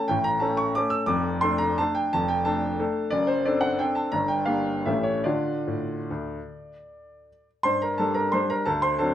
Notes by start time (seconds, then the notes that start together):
0.08 A1 A2 G5
0.24 A#5
0.40 A3 C#4 A4 A5
0.57 C#6
0.75 A3 C#4 A4 D6
0.90 E6
1.06 F1 F2 D6
1.41 A3 D4 A4 C6
1.58 A#5
1.78 A3 D4 A4 A5
1.95 G5
2.13 F1 F2 A5
2.28 G5
2.45 A3 D4 A4 A5
2.79 A3 D4 A4
3.10 F#1 F#2 D5
3.27 C5
3.45 C4 D4 A4 D5
3.61 F#5
3.79 C4 D4 A4 G5
3.95 A5
4.12 G1 G2 A#5
4.28 G5
4.46 A#3 D4 G4 F5
4.86 A1 A2 A3 C#4 G4 E5
5.03 C#5
5.24 D3 D4 F4 D5
5.67 A2
6.11 D2
7.63 G2 C5 C6
7.82 A#4 A#5
7.98 G3 D4 A4 A5
8.14 A#4 A#5
8.32 G3 D4 C5 C6
8.50 A#4 A#5
8.66 D2 A4 A5
8.82 C5 C6
8.99 F#3 C4 D4 A4 A5